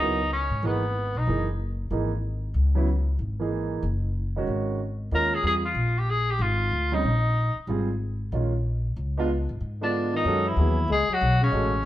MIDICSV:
0, 0, Header, 1, 6, 480
1, 0, Start_track
1, 0, Tempo, 320342
1, 1906, Time_signature, 4, 2, 24, 8
1, 17761, End_track
2, 0, Start_track
2, 0, Title_t, "Tenor saxophone"
2, 0, Program_c, 0, 66
2, 0, Note_on_c, 0, 63, 93
2, 448, Note_off_c, 0, 63, 0
2, 493, Note_on_c, 0, 61, 84
2, 986, Note_on_c, 0, 59, 75
2, 1008, Note_off_c, 0, 61, 0
2, 1767, Note_on_c, 0, 63, 79
2, 1789, Note_off_c, 0, 59, 0
2, 2226, Note_off_c, 0, 63, 0
2, 7714, Note_on_c, 0, 70, 94
2, 8008, Note_on_c, 0, 68, 87
2, 8031, Note_off_c, 0, 70, 0
2, 8168, Note_off_c, 0, 68, 0
2, 8191, Note_on_c, 0, 68, 90
2, 8316, Note_off_c, 0, 68, 0
2, 8471, Note_on_c, 0, 65, 75
2, 8967, Note_on_c, 0, 67, 83
2, 8989, Note_off_c, 0, 65, 0
2, 9143, Note_on_c, 0, 68, 91
2, 9165, Note_off_c, 0, 67, 0
2, 9446, Note_on_c, 0, 67, 83
2, 9468, Note_off_c, 0, 68, 0
2, 9619, Note_on_c, 0, 65, 73
2, 9641, Note_off_c, 0, 67, 0
2, 10393, Note_on_c, 0, 63, 76
2, 10416, Note_off_c, 0, 65, 0
2, 11341, Note_off_c, 0, 63, 0
2, 14730, Note_on_c, 0, 62, 76
2, 15158, Note_off_c, 0, 62, 0
2, 15225, Note_on_c, 0, 63, 79
2, 15701, Note_on_c, 0, 64, 89
2, 15724, Note_off_c, 0, 63, 0
2, 16336, Note_off_c, 0, 64, 0
2, 16361, Note_on_c, 0, 68, 100
2, 16679, Note_on_c, 0, 66, 101
2, 16702, Note_off_c, 0, 68, 0
2, 17124, Note_off_c, 0, 66, 0
2, 17134, Note_on_c, 0, 61, 81
2, 17761, Note_off_c, 0, 61, 0
2, 17761, End_track
3, 0, Start_track
3, 0, Title_t, "Grand piano"
3, 0, Program_c, 1, 0
3, 1, Note_on_c, 1, 54, 51
3, 18, Note_on_c, 1, 59, 46
3, 22, Note_on_c, 1, 64, 42
3, 29, Note_on_c, 1, 70, 49
3, 263, Note_off_c, 1, 54, 0
3, 272, Note_off_c, 1, 59, 0
3, 274, Note_off_c, 1, 64, 0
3, 277, Note_off_c, 1, 70, 0
3, 947, Note_on_c, 1, 52, 47
3, 958, Note_on_c, 1, 58, 45
3, 974, Note_on_c, 1, 63, 46
3, 980, Note_on_c, 1, 68, 53
3, 1216, Note_off_c, 1, 52, 0
3, 1221, Note_off_c, 1, 58, 0
3, 1229, Note_off_c, 1, 63, 0
3, 1233, Note_off_c, 1, 68, 0
3, 1910, Note_on_c, 1, 52, 51
3, 1925, Note_on_c, 1, 58, 48
3, 1931, Note_on_c, 1, 63, 45
3, 1943, Note_on_c, 1, 68, 50
3, 2177, Note_off_c, 1, 52, 0
3, 2185, Note_off_c, 1, 58, 0
3, 2188, Note_off_c, 1, 63, 0
3, 2193, Note_off_c, 1, 68, 0
3, 2860, Note_on_c, 1, 52, 52
3, 2865, Note_on_c, 1, 58, 44
3, 2877, Note_on_c, 1, 63, 45
3, 2884, Note_on_c, 1, 68, 51
3, 3132, Note_off_c, 1, 52, 0
3, 3134, Note_off_c, 1, 58, 0
3, 3140, Note_off_c, 1, 63, 0
3, 3144, Note_off_c, 1, 68, 0
3, 4120, Note_on_c, 1, 49, 59
3, 4132, Note_on_c, 1, 54, 54
3, 4139, Note_on_c, 1, 59, 49
3, 4156, Note_on_c, 1, 64, 64
3, 4285, Note_off_c, 1, 49, 0
3, 4291, Note_off_c, 1, 54, 0
3, 4295, Note_off_c, 1, 59, 0
3, 4303, Note_off_c, 1, 64, 0
3, 5088, Note_on_c, 1, 52, 47
3, 5095, Note_on_c, 1, 58, 43
3, 5110, Note_on_c, 1, 63, 45
3, 5120, Note_on_c, 1, 68, 55
3, 5711, Note_off_c, 1, 52, 0
3, 5715, Note_off_c, 1, 58, 0
3, 5722, Note_off_c, 1, 63, 0
3, 5727, Note_off_c, 1, 68, 0
3, 6539, Note_on_c, 1, 51, 55
3, 6550, Note_on_c, 1, 56, 52
3, 6557, Note_on_c, 1, 61, 54
3, 6567, Note_on_c, 1, 66, 59
3, 7157, Note_off_c, 1, 51, 0
3, 7162, Note_off_c, 1, 56, 0
3, 7166, Note_off_c, 1, 61, 0
3, 7171, Note_off_c, 1, 66, 0
3, 7675, Note_on_c, 1, 51, 50
3, 7679, Note_on_c, 1, 56, 52
3, 7695, Note_on_c, 1, 61, 47
3, 7698, Note_on_c, 1, 65, 60
3, 7940, Note_off_c, 1, 51, 0
3, 7942, Note_off_c, 1, 56, 0
3, 7950, Note_off_c, 1, 61, 0
3, 7952, Note_off_c, 1, 65, 0
3, 8134, Note_on_c, 1, 55, 49
3, 8151, Note_on_c, 1, 60, 39
3, 8157, Note_on_c, 1, 65, 44
3, 8166, Note_on_c, 1, 68, 45
3, 8410, Note_off_c, 1, 55, 0
3, 8418, Note_off_c, 1, 60, 0
3, 8421, Note_off_c, 1, 65, 0
3, 8425, Note_off_c, 1, 68, 0
3, 10368, Note_on_c, 1, 49, 59
3, 10375, Note_on_c, 1, 55, 57
3, 10385, Note_on_c, 1, 60, 57
3, 10394, Note_on_c, 1, 63, 70
3, 10530, Note_off_c, 1, 49, 0
3, 10534, Note_off_c, 1, 55, 0
3, 10539, Note_off_c, 1, 60, 0
3, 10543, Note_off_c, 1, 63, 0
3, 11511, Note_on_c, 1, 55, 51
3, 11520, Note_on_c, 1, 60, 46
3, 11531, Note_on_c, 1, 65, 49
3, 11540, Note_on_c, 1, 68, 59
3, 11780, Note_off_c, 1, 55, 0
3, 11784, Note_off_c, 1, 60, 0
3, 11790, Note_off_c, 1, 65, 0
3, 11794, Note_off_c, 1, 68, 0
3, 12477, Note_on_c, 1, 51, 40
3, 12487, Note_on_c, 1, 56, 40
3, 12494, Note_on_c, 1, 61, 40
3, 12504, Note_on_c, 1, 65, 50
3, 12743, Note_off_c, 1, 51, 0
3, 12748, Note_off_c, 1, 56, 0
3, 12752, Note_off_c, 1, 61, 0
3, 12757, Note_off_c, 1, 65, 0
3, 13748, Note_on_c, 1, 56, 69
3, 13754, Note_on_c, 1, 59, 65
3, 13765, Note_on_c, 1, 62, 58
3, 13778, Note_on_c, 1, 65, 84
3, 13902, Note_off_c, 1, 56, 0
3, 13905, Note_off_c, 1, 59, 0
3, 13910, Note_off_c, 1, 62, 0
3, 13917, Note_off_c, 1, 65, 0
3, 14707, Note_on_c, 1, 56, 53
3, 14715, Note_on_c, 1, 59, 46
3, 14717, Note_on_c, 1, 62, 46
3, 14729, Note_on_c, 1, 65, 64
3, 15323, Note_off_c, 1, 56, 0
3, 15327, Note_off_c, 1, 59, 0
3, 15328, Note_off_c, 1, 62, 0
3, 15334, Note_off_c, 1, 65, 0
3, 15363, Note_on_c, 1, 56, 66
3, 15367, Note_on_c, 1, 61, 55
3, 15381, Note_on_c, 1, 66, 54
3, 15389, Note_on_c, 1, 69, 71
3, 15626, Note_off_c, 1, 56, 0
3, 15628, Note_off_c, 1, 61, 0
3, 15635, Note_off_c, 1, 66, 0
3, 15639, Note_off_c, 1, 69, 0
3, 15841, Note_on_c, 1, 54, 51
3, 15851, Note_on_c, 1, 59, 50
3, 15860, Note_on_c, 1, 64, 50
3, 15863, Note_on_c, 1, 68, 58
3, 16105, Note_off_c, 1, 54, 0
3, 16110, Note_off_c, 1, 59, 0
3, 16115, Note_off_c, 1, 64, 0
3, 16116, Note_off_c, 1, 68, 0
3, 17260, Note_on_c, 1, 56, 60
3, 17268, Note_on_c, 1, 61, 53
3, 17285, Note_on_c, 1, 66, 55
3, 17288, Note_on_c, 1, 69, 61
3, 17533, Note_off_c, 1, 56, 0
3, 17537, Note_off_c, 1, 61, 0
3, 17546, Note_off_c, 1, 66, 0
3, 17547, Note_off_c, 1, 69, 0
3, 17761, End_track
4, 0, Start_track
4, 0, Title_t, "Trombone"
4, 0, Program_c, 2, 57
4, 14695, Note_on_c, 2, 50, 52
4, 15139, Note_off_c, 2, 50, 0
4, 15180, Note_on_c, 2, 51, 67
4, 15674, Note_on_c, 2, 52, 71
4, 15696, Note_off_c, 2, 51, 0
4, 16314, Note_off_c, 2, 52, 0
4, 16323, Note_on_c, 2, 56, 93
4, 16635, Note_on_c, 2, 54, 76
4, 16657, Note_off_c, 2, 56, 0
4, 17088, Note_off_c, 2, 54, 0
4, 17097, Note_on_c, 2, 49, 69
4, 17761, Note_off_c, 2, 49, 0
4, 17761, End_track
5, 0, Start_track
5, 0, Title_t, "Upright bass"
5, 0, Program_c, 3, 32
5, 0, Note_on_c, 3, 37, 69
5, 706, Note_off_c, 3, 37, 0
5, 754, Note_on_c, 3, 44, 63
5, 927, Note_off_c, 3, 44, 0
5, 939, Note_on_c, 3, 32, 71
5, 1667, Note_off_c, 3, 32, 0
5, 1718, Note_on_c, 3, 35, 62
5, 1889, Note_off_c, 3, 35, 0
5, 1901, Note_on_c, 3, 30, 68
5, 2815, Note_off_c, 3, 30, 0
5, 2854, Note_on_c, 3, 32, 71
5, 3771, Note_off_c, 3, 32, 0
5, 3809, Note_on_c, 3, 37, 76
5, 4729, Note_off_c, 3, 37, 0
5, 4779, Note_on_c, 3, 32, 73
5, 5694, Note_off_c, 3, 32, 0
5, 5732, Note_on_c, 3, 30, 78
5, 6651, Note_off_c, 3, 30, 0
5, 6700, Note_on_c, 3, 32, 64
5, 7615, Note_off_c, 3, 32, 0
5, 7662, Note_on_c, 3, 39, 69
5, 8111, Note_off_c, 3, 39, 0
5, 8140, Note_on_c, 3, 40, 64
5, 8590, Note_off_c, 3, 40, 0
5, 8609, Note_on_c, 3, 34, 79
5, 9530, Note_off_c, 3, 34, 0
5, 9571, Note_on_c, 3, 32, 79
5, 10025, Note_off_c, 3, 32, 0
5, 10057, Note_on_c, 3, 38, 66
5, 10509, Note_off_c, 3, 38, 0
5, 10538, Note_on_c, 3, 34, 71
5, 11269, Note_off_c, 3, 34, 0
5, 11496, Note_on_c, 3, 32, 76
5, 12415, Note_off_c, 3, 32, 0
5, 12468, Note_on_c, 3, 34, 74
5, 13382, Note_off_c, 3, 34, 0
5, 13433, Note_on_c, 3, 37, 74
5, 14157, Note_off_c, 3, 37, 0
5, 14219, Note_on_c, 3, 44, 67
5, 14383, Note_off_c, 3, 44, 0
5, 14394, Note_on_c, 3, 44, 64
5, 15305, Note_off_c, 3, 44, 0
5, 15357, Note_on_c, 3, 42, 75
5, 15819, Note_off_c, 3, 42, 0
5, 15833, Note_on_c, 3, 39, 75
5, 16290, Note_off_c, 3, 39, 0
5, 16299, Note_on_c, 3, 37, 75
5, 16583, Note_off_c, 3, 37, 0
5, 16799, Note_on_c, 3, 35, 80
5, 17260, Note_off_c, 3, 35, 0
5, 17267, Note_on_c, 3, 33, 75
5, 17723, Note_off_c, 3, 33, 0
5, 17761, End_track
6, 0, Start_track
6, 0, Title_t, "Muted upright bass strokes"
6, 11320, Note_on_c, 9, 29, 38
6, 11469, Note_off_c, 9, 29, 0
6, 16610, Note_on_c, 9, 29, 33
6, 16760, Note_off_c, 9, 29, 0
6, 17761, End_track
0, 0, End_of_file